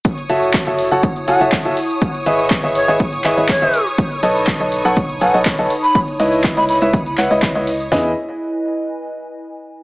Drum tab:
HH |xxo-xxo-xxo-xxo-|xxoxxxo-xxo-xxo-|xxo-xxo-xxo-xxo-|xxo-xxo-xxo-xxo-|
SH |xx-xxx-xxx-xxx-x|xx-xxx-xxx-xxx-x|xx-xxx-xxx-xxx-x|xx-xxx-xxx-xxx-x|
CP |----x-------x---|----x-----x-x---|----x-------x---|----x-----x-x---|
SD |----------------|----------------|----------------|----------------|
FT |----------------|----------------|----------------|----------------|
BD |o---o---o---o---|o---o---o---o---|o---o---o---o---|o---o---o---o---|

HH |o---------------|
SH |----------------|
CP |----------------|
SD |o---------------|
FT |o---------------|
BD |----------------|